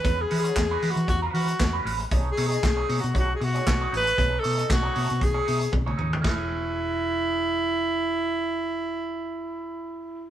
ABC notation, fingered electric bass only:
X:1
M:4/4
L:1/16
Q:"Swing 16ths" 1/4=116
K:E
V:1 name="Fingered electric bass" clef=bass
E,,2 E,2 E,,2 E, E, E,,2 E,2 E,,2 A,,,2 | B,,,2 B,,2 B,,,2 B,, B,, B,,,2 B,,2 B,,,2 A,,,2 | B,,,2 B,,2 B,,,2 B,, B,, B,,,2 B,,2 B,,,2 D,,2 | E,,,16- |
E,,,16 |]